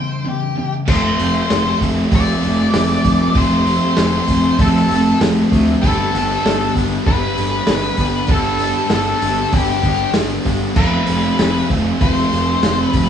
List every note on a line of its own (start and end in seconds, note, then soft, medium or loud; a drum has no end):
0.00 0.23 E2 medium
0.00 0.23 C#3 medium
0.00 0.26 C5 medium
0.00 0.24 G5 loud
0.25 0.54 E2 medium
0.25 0.54 C#3 medium
0.25 0.73 G4 medium
0.57 0.85 E2 medium
0.57 0.86 C#3 medium
0.88 1.10 F1 medium
0.88 1.19 F2 loud
0.88 1.18 C3 loud
0.88 1.19 F3 loud
0.88 1.19 A3 loud
0.88 1.19 C4 loud
0.88 2.13 F4 loud
0.88 2.13 A4 loud
0.88 1.78 C5 loud
0.88 kick loud
0.88 crash loud
1.19 1.41 F1 medium
1.19 1.49 F2 medium
1.19 1.49 C3 loud
1.19 1.50 F3 medium
1.19 1.51 A3 medium
1.19 1.51 C4 loud
1.19 open hi-hat medium
1.50 1.72 F1 medium
1.50 1.79 F2 medium
1.50 1.78 C3 medium
1.50 1.79 F3 medium
1.50 1.80 A3 loud
1.50 1.80 C4 medium
1.50 snare loud
1.50 open hi-hat medium
1.79 2.03 F1 loud
1.79 2.10 F2 medium
1.79 2.10 C3 medium
1.79 2.10 F3 medium
1.79 2.11 A3 medium
1.79 2.10 C4 medium
1.79 kick medium
1.79 open hi-hat medium
2.11 2.34 F1 medium
2.11 2.40 F2 medium
2.11 2.41 C3 loud
2.11 2.41 F3 medium
2.11 2.41 A3 loud
2.11 2.42 C4 loud
2.11 3.34 F4 medium
2.11 3.35 A4 medium
2.11 kick loud
2.11 open hi-hat medium
2.16 3.41 D5 loud
2.42 2.66 F1 loud
2.42 2.71 F2 medium
2.42 2.71 C3 medium
2.42 2.71 F3 medium
2.42 2.72 A3 loud
2.42 2.71 C4 medium
2.42 open hi-hat medium
2.72 2.96 F1 medium
2.72 3.02 F2 medium
2.72 3.02 C3 medium
2.72 3.02 F3 medium
2.72 3.03 A3 loud
2.72 3.03 C4 loud
2.72 snare loud
2.72 open hi-hat medium
2.90 snare soft
3.03 3.26 F1 medium
3.03 3.33 F2 medium
3.03 3.34 C3 medium
3.03 3.34 F3 medium
3.03 3.34 A3 medium
3.03 3.35 C4 loud
3.03 kick medium
3.03 open hi-hat medium
3.34 3.78 F1 medium
3.34 3.63 F2 loud
3.34 3.63 C3 medium
3.34 3.63 F3 loud
3.34 3.64 A3 loud
3.34 3.64 C4 loud
3.34 4.58 F4 loud
3.34 4.58 A4 loud
3.34 3.96 C5 loud
3.34 kick loud
3.34 open hi-hat medium
3.64 3.94 F2 medium
3.64 3.94 C3 medium
3.64 3.95 F3 medium
3.64 3.95 A3 medium
3.64 3.95 C4 medium
3.64 open hi-hat medium
3.95 4.19 F1 loud
3.95 4.25 F2 loud
3.95 4.25 C3 medium
3.95 4.25 F3 loud
3.95 4.26 A3 loud
3.95 4.26 C4 loud
3.95 4.60 C5 medium
3.95 snare loud
3.95 open hi-hat medium
4.26 4.50 F1 medium
4.26 4.56 F2 medium
4.26 4.56 C3 medium
4.26 4.56 F3 medium
4.26 4.57 A3 medium
4.26 4.57 C4 medium
4.26 kick medium
4.26 open hi-hat medium
4.57 4.80 F1 medium
4.57 4.86 F2 medium
4.57 4.87 C3 medium
4.57 4.87 F3 loud
4.57 4.88 A3 loud
4.57 4.88 C4 loud
4.57 5.81 F4 medium
4.57 5.18 A4 medium
4.57 kick loud
4.57 open hi-hat medium
4.61 5.82 A4 medium
4.76 snare soft
4.88 5.11 F1 medium
4.88 5.18 F2 medium
4.88 5.19 C3 medium
4.88 5.19 F3 loud
4.88 5.20 A3 medium
4.88 5.20 C4 medium
4.88 open hi-hat medium
5.20 5.42 F1 medium
5.20 5.48 F2 medium
5.20 5.48 C3 medium
5.20 5.49 F3 medium
5.20 5.50 A3 medium
5.20 5.50 C4 medium
5.20 snare loud
5.20 open hi-hat medium
5.49 5.73 D2 medium
5.49 5.80 F2 medium
5.49 5.80 C3 medium
5.49 5.80 F3 loud
5.49 5.81 A3 loud
5.49 5.81 C4 loud
5.49 kick medium
5.49 open hi-hat medium
5.80 6.05 G1 medium
5.80 6.12 G2 loud
5.80 6.11 D3 loud
5.80 6.12 G3 loud
5.80 6.12 B3 loud
5.80 6.13 D4 loud
5.80 6.71 A4 loud
5.80 7.07 B4 loud
5.80 kick loud
5.80 open hi-hat medium
5.85 8.30 G4 loud
6.12 6.36 G1 medium
6.12 6.43 G2 medium
6.12 6.43 D3 medium
6.12 6.43 G3 loud
6.12 6.44 B3 loud
6.12 6.45 D4 medium
6.12 open hi-hat medium
6.43 6.67 G1 loud
6.43 6.74 G2 medium
6.43 6.73 D3 medium
6.43 6.74 G3 medium
6.43 6.75 B3 loud
6.43 6.75 D4 loud
6.43 snare loud
6.43 open hi-hat medium
6.74 6.97 G1 medium
6.74 7.02 G2 medium
6.74 7.03 D3 medium
6.74 7.03 G3 medium
6.74 7.03 B3 medium
6.74 7.04 D4 loud
6.74 kick medium
6.74 open hi-hat medium
7.03 7.28 G1 loud
7.03 7.34 G2 medium
7.03 7.35 D3 medium
7.03 7.35 G3 medium
7.03 7.35 B3 loud
7.03 7.35 D4 loud
7.03 8.31 B4 loud
7.03 kick loud
7.03 open hi-hat medium
7.08 8.29 B4 loud
7.35 7.60 G1 medium
7.35 7.64 G2 medium
7.35 7.65 D3 medium
7.35 7.65 G3 medium
7.35 7.66 B3 medium
7.35 7.66 D4 medium
7.35 open hi-hat medium
7.65 7.90 G1 loud
7.65 7.96 G2 loud
7.65 7.96 D3 medium
7.65 7.97 G3 loud
7.65 7.96 B3 medium
7.65 7.97 D4 medium
7.65 snare loud
7.65 open hi-hat medium
7.83 snare soft
7.97 8.20 G1 loud
7.97 8.26 G2 medium
7.97 8.26 D3 medium
7.97 8.26 G3 medium
7.97 8.27 B3 loud
7.97 8.27 D4 medium
7.97 kick medium
7.97 open hi-hat medium
8.27 8.72 G1 medium
8.27 8.56 G2 loud
8.27 8.57 D3 medium
8.27 8.57 G3 loud
8.27 8.57 B3 loud
8.27 8.58 D4 loud
8.27 kick loud
8.27 open hi-hat medium
8.31 10.76 G4 loud
8.31 8.92 A4 loud
8.31 9.53 B4 loud
8.58 8.88 G2 medium
8.58 8.89 D3 medium
8.58 8.89 G3 medium
8.58 8.89 B3 medium
8.58 8.89 D4 medium
8.58 open hi-hat medium
8.89 9.13 G1 medium
8.89 9.18 G2 medium
8.89 9.19 D3 loud
8.89 9.19 G3 medium
8.89 9.19 B3 loud
8.89 9.20 D4 medium
8.89 snare loud
8.89 open hi-hat medium
8.94 9.57 A4 loud
9.19 9.44 G1 medium
9.19 9.49 G2 medium
9.19 9.50 D3 medium
9.19 9.50 G3 medium
9.19 9.51 B3 medium
9.19 9.51 D4 medium
9.19 open hi-hat medium
9.51 9.75 G1 loud
9.51 9.80 G2 medium
9.51 9.81 D3 loud
9.51 9.81 G3 loud
9.51 9.81 B3 loud
9.51 9.82 D4 loud
9.51 10.12 G4 medium
9.51 kick loud
9.51 open hi-hat medium
9.55 10.76 B4 medium
9.81 10.05 G1 medium
9.81 10.11 G2 medium
9.81 10.12 D3 medium
9.81 10.13 G3 loud
9.81 10.12 B3 loud
9.81 10.13 D4 medium
9.81 kick medium
9.81 open hi-hat medium
10.13 10.38 G1 medium
10.13 10.43 G2 medium
10.13 10.44 D3 medium
10.13 10.44 G3 loud
10.13 10.45 B3 loud
10.13 10.44 D4 loud
10.13 snare loud
10.13 open hi-hat medium
10.44 10.67 G1 medium
10.44 10.75 G2 medium
10.44 10.75 D3 medium
10.44 10.75 G3 medium
10.44 10.76 B3 medium
10.44 10.75 D4 loud
10.44 kick medium
10.44 open hi-hat medium
10.75 10.98 F1 medium
10.75 13.09 F2 loud
10.75 13.09 C3 loud
10.75 11.05 F3 medium
10.75 11.06 A3 loud
10.75 11.06 C4 loud
10.75 11.07 F4 loud
10.75 12.02 A4 medium
10.75 11.66 B4 loud
10.75 kick loud
10.75 crash loud
11.06 11.31 F1 medium
11.06 11.37 F3 medium
11.06 11.37 A3 medium
11.06 11.38 C4 loud
11.06 11.38 F4 medium
11.06 open hi-hat medium
11.37 11.61 F1 medium
11.37 11.68 F3 medium
11.37 11.69 A3 loud
11.37 11.69 C4 loud
11.37 11.69 F4 loud
11.37 snare loud
11.37 open hi-hat medium
11.68 11.92 F1 loud
11.68 11.98 F3 medium
11.68 11.99 A3 medium
11.68 12.00 C4 medium
11.68 11.99 F4 medium
11.68 kick medium
11.68 open hi-hat medium
11.99 12.23 F1 medium
11.99 12.29 F3 loud
11.99 12.30 A3 loud
11.99 12.32 C4 loud
11.99 12.31 F4 loud
11.99 13.09 A4 loud
11.99 12.85 C5 medium
11.99 kick loud
11.99 open hi-hat medium
12.18 snare soft
12.31 12.54 F1 medium
12.31 12.61 F3 medium
12.31 12.62 A3 medium
12.31 12.63 C4 medium
12.31 12.62 F4 loud
12.31 open hi-hat medium
12.63 12.85 F1 medium
12.63 12.91 F3 medium
12.63 12.92 A3 loud
12.63 12.93 C4 loud
12.63 12.92 F4 loud
12.63 snare loud
12.63 open hi-hat medium
12.85 13.09 B4 medium
12.92 13.09 F1 medium
12.92 13.09 F3 medium
12.92 13.09 A3 medium
12.92 13.09 C4 medium
12.92 13.09 F4 medium
12.92 kick medium
12.92 open hi-hat medium